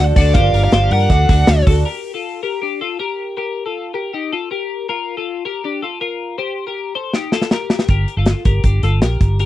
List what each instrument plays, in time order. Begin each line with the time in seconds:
Already playing: fingered electric bass D2, twelve-string acoustic guitar D3 A3, upright piano D4 F#4 A4 C5 D5, clean electric guitar F#4 A4
0.00 twelve-string acoustic guitar D4 F#4 A4
0.15 fingered electric bass D2, twelve-string acoustic guitar A3 D4 F#4 A4, clean electric guitar D4 F#4, lead electric guitar D5, kick, hi-hat pedal, open hi-hat
0.34 fingered electric bass G1, twelve-string acoustic guitar G2 D3 F3 A#3 D4 A#4, upright piano F4 G4 A#4 D5, clean electric guitar G4 C5, lead electric guitar F5, kick, hi-hat pedal, open hi-hat
0.53 fingered electric bass G1, clean electric guitar G4 A#4, hi-hat pedal, open hi-hat
0.64 lead electric guitar F5
0.72 fingered electric bass G1, twelve-string acoustic guitar F3 A#3 D4 A#4, clean electric guitar G4 C5, snare, hi-hat pedal, open hi-hat
0.91 fingered electric bass G2, twelve-string acoustic guitar F3 A#3 D4 A#4, clean electric guitar G4 A#4, lead electric guitar F#5, hi-hat pedal, open hi-hat
1.10 fingered electric bass D2, twelve-string acoustic guitar D3 A3 D4 F#4 A4, upright piano D4 F#4 A4 D5, clean electric guitar D4 F#4, kick, hi-hat pedal, open hi-hat
1.28 fingered electric bass D2, twelve-string acoustic guitar A3 D4 F#4 A4, clean electric guitar D4 F#4, kick, snare, hi-hat pedal, open hi-hat
1.47 fingered electric bass D2, twelve-string acoustic guitar A3 D4 F#4 A4, snare, hi-hat pedal, open hi-hat
1.66 fingered electric bass D2, twelve-string acoustic guitar A3 D4 F#4 A4, clean electric guitar F#4 A4, kick, hi-hat pedal, open hi-hat
1.85 clean electric guitar G4 A#4
2.14 clean electric guitar F4 A4
2.43 clean electric guitar G4 A#4
2.62 clean electric guitar D4 G4
2.81 clean electric guitar F4 A4
2.99 clean electric guitar G4 A#4
3.37 clean electric guitar G4 A#4
3.66 clean electric guitar F4 A4
3.94 clean electric guitar G4 A#4
4.13 clean electric guitar D#4 G4
4.32 clean electric guitar F4 A4
4.51 clean electric guitar G4 A#4
4.89 clean electric guitar F4 A#4
5.17 clean electric guitar F4 A4
5.45 clean electric guitar G4 A#4
5.64 clean electric guitar D4 G4
5.82 clean electric guitar F4 A4
6.01 clean electric guitar F4 A#4
6.38 clean electric guitar G4 C5
6.67 clean electric guitar G4 A#4
6.95 clean electric guitar A4 C5
7.13 clean electric guitar D#4 G4, snare
7.32 clean electric guitar F4 A4, snare
7.42 snare
7.51 clean electric guitar G4 A#4, snare
7.70 snare
7.79 snare
7.88 fingered electric bass G1, clean electric guitar G4 A#4, kick, closed hi-hat
8.08 closed hi-hat
8.17 fingered electric bass G1, clean electric guitar F4 A4
8.26 snare, closed hi-hat
8.45 fingered electric bass G1, clean electric guitar G4 A#4, kick, closed hi-hat
8.63 fingered electric bass G1, clean electric guitar D4 G4, kick, closed hi-hat
8.83 fingered electric bass G1, clean electric guitar F4 A4, snare, closed hi-hat
9.02 fingered electric bass A#1, clean electric guitar G4 A#4, snare, closed hi-hat
9.21 fingered electric bass G1, kick, closed hi-hat
9.39 clean electric guitar G4 A#4, closed hi-hat